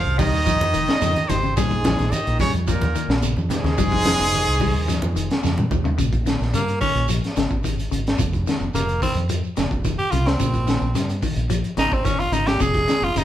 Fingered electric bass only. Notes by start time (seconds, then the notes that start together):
0.06 C2
0.33 D#2
0.61 F2
0.75 F1
1.02 F2
1.30 G#1
1.57 A#1
1.99 A#1
2.27 A#1
2.54 F2
2.82 D#2
3.08 A#1
3.36 F2
3.64 D#2
3.78 F1
4.19 F1
4.47 C2
4.75 D#2
5.03 F2
5.16 F1
5.44 F2
5.71 D#2
5.98 A#1
6.41 A#1
6.54 G2
6.95 A#1
7.37 G#1
7.51 G#1
7.92 G#1
8.19 F1
8.60 F1
8.74 F1
9.15 F2
9.57 F1
9.71 F1
10.12 C2
10.40 A#1
10.81 A#1
10.95 G2
11.36 A#1
11.77 G#1
11.92 G#1
12.32 G#1
12.60 F1
13.02 F1
13.15 F1